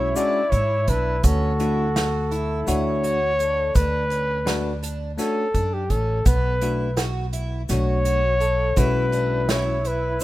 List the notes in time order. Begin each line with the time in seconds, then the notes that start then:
Already playing: B1 G#3 C#4 E4 F#4 C#5
0.16 G#3 C#4 D4 F#4 D5, closed hi-hat, shaker
0.50 G#2 E4 C#5, kick, closed hi-hat
0.88 B1 D4 B4, kick, closed hi-hat
1.24 D2 C#4 F#4 A4, kick, closed hi-hat, shaker
1.60 A3 D4 E4 F#4, closed hi-hat, shaker
1.96 F#4, snare, closed hi-hat
2.31 E4, closed hi-hat
2.67 D2 A3 D4 F#4 C#5, closed hi-hat, shaker
3.04 F#4, closed hi-hat
3.39 D4 A4, closed hi-hat, shaker
3.75 D2 D4 B4, kick, closed hi-hat, shaker
4.10 C#4, closed hi-hat
4.46 A3 D4 F#4, snare, closed hi-hat
4.83 D4, closed hi-hat
5.18 A3 C#4 D4 F#4 A4, snare, closed hi-hat, shaker
5.54 F#2 D4, kick, closed hi-hat
5.74 G4
5.90 A1 C#4 A4, kick, closed hi-hat
6.25 B1 B3 B4, kick, closed hi-hat, shaker
6.61 A3 D4 E4 F#4, closed hi-hat
6.97 F#4, snare, closed hi-hat
7.33 E4, closed hi-hat
7.69 B1 A3 D4 F#4 C#5, snare, closed hi-hat, shaker
8.05 F#4, closed hi-hat
8.40 A4, closed hi-hat
8.76 B1 G#3 C#4 E4 F#4 B4, kick, closed hi-hat, shaker
9.12 D4, closed hi-hat
9.49 E4 C#5, snare, closed hi-hat
9.85 E4 B4, closed hi-hat
10.20 D4, shaker